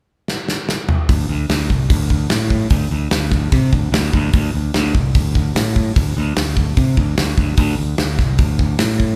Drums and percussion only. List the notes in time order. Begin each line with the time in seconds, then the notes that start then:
0.28 snare
0.48 snare
0.69 snare
0.89 mid tom
1.09 kick, open hi-hat
1.50 snare, open hi-hat
1.70 kick
1.90 kick, open hi-hat
2.10 kick
2.30 snare, open hi-hat
2.50 kick
2.70 kick, open hi-hat
3.11 snare, open hi-hat
3.31 kick, snare
3.52 kick, open hi-hat
3.73 kick
3.94 snare, open hi-hat
4.13 kick
4.33 kick, open hi-hat
4.74 snare, open hi-hat
4.95 kick
5.15 kick, open hi-hat
5.35 kick
5.56 snare, open hi-hat
5.76 kick
5.96 kick, open hi-hat
6.36 snare, open hi-hat
6.57 kick
6.77 kick, open hi-hat
6.97 kick
7.18 snare, open hi-hat
7.38 kick
7.57 kick, open hi-hat
7.98 snare, open hi-hat
8.19 kick, snare
8.38 kick, open hi-hat
8.59 kick
8.79 snare, open hi-hat
9.00 kick